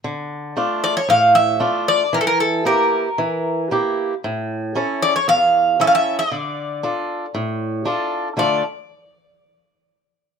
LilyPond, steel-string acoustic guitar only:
\new Staff \with { instrumentName = "Steel-string acoustic guitar" } { \time 4/4 \key d \minor \tempo 4 = 115 d4 <a d' f'>4 a,4 <a d' f'>4 | e4 <bes e' g'>4 e4 <bes e' g'>4 | a,4 <cis' e' a'>4 e,4 <cis' e' a'>4 | d4 <d' f' a'>4 a,4 <d' f' a'>4 |
<d a d' f' a'>8 r2. r8 | }